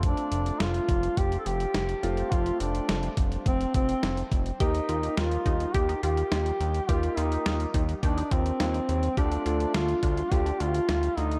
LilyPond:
<<
  \new Staff \with { instrumentName = "Duduk" } { \time 4/4 \key f \mixolydian \tempo 4 = 105 d'4 f'4 g'16. a'32 g'4. | f'8 d'4 r8 c'8 c'4 r8 | ees'4 f'4 g'8 g'4. | f'8 ees'4 r8 d'8 c'4. |
d'4 f'4 g'8 f'4 ees'8 | }
  \new Staff \with { instrumentName = "Synth arpeggio sound" } { \time 4/4 \key f \mixolydian r1 | r1 | g'8 f'8 f'8 ees'8 g'16 ees'16 f'8 f'8 r8 | g'8 f'8 f'8 ees'8 g'16 ees'16 f'8 f'8 r8 |
g'8 f'8 f'8 d'8 f'16 d'16 f'8 f'8 r8 | }
  \new Staff \with { instrumentName = "Grand piano" } { \time 4/4 \key f \mixolydian <a c' f'>2.~ <a c' f'>8 <a c' f'>8~ | <a c' f'>2.~ <a c' f'>8 r8 | <bes ees' g'>1 | <bes ees' g'>1 |
<a d' f'>1 | }
  \new Staff \with { instrumentName = "Analog synth bass" } { \clef bass \time 4/4 \key f \mixolydian f,,8 f,,8 f,,8 f,,8 f,,8 f,,8 f,,8 f,,8 | f,,8 f,,8 f,,8 f,,8 f,,8 f,,8 f,,8 f,,8 | ees,8 ees,8 ees,8 ees,8 ees,8 ees,8 ees,8 ees,8 | ees,8 ees,8 ees,8 ees,8 ees,8 ees,8 ees,8 ees,8 |
d,8 d,8 d,8 d,8 d,8 d,8 d,8 d,8 | }
  \new DrumStaff \with { instrumentName = "Drums" } \drummode { \time 4/4 <hh bd>16 hh16 hh16 hh16 <hh sn>16 hh16 <hh bd>16 hh16 <hh bd>16 hh16 hh16 hh16 <hh sn>16 hh16 hh16 hh16 | <hh bd>16 hh16 hh16 hh16 <hh sn>16 hh16 <hh bd>16 hh16 <hh bd>16 hh16 <hh bd>16 hh16 <hh sn>16 hh16 <hh bd>16 hh16 | <hh bd>16 hh16 hh16 hh16 <hh sn>16 hh16 <hh bd>16 hh16 <hh bd>16 hh16 hh16 hh16 <hh sn>16 hh16 hh16 hh16 | <hh bd>16 hh16 hh16 hh16 <hh sn>16 hh16 <hh bd>16 hh16 <hh bd>16 hh16 <hh bd>16 hh16 <hh sn>16 hh16 hh16 hh16 |
<hh bd>16 hh16 hh16 hh16 <hh sn>16 hh16 <hh bd>16 hh16 <hh bd>16 hh16 hh16 hh16 <hh sn>16 hh16 hh16 hh16 | }
>>